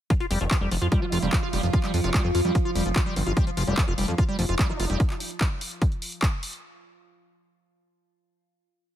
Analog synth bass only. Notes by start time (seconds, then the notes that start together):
0.31 F1
0.41 F1
0.61 F1
0.71 F1
0.82 F2
1.12 F1
1.22 F1
1.53 F1
1.63 F1
1.94 F2
2.04 F1
2.24 F2
2.35 F2
2.45 F2
2.75 F1
2.86 F1
3.16 G1
3.26 G1
3.57 F1
3.67 F1
3.88 F1
3.98 F1
4.08 F2
4.39 F1
4.49 F1
4.80 F1
4.90 F1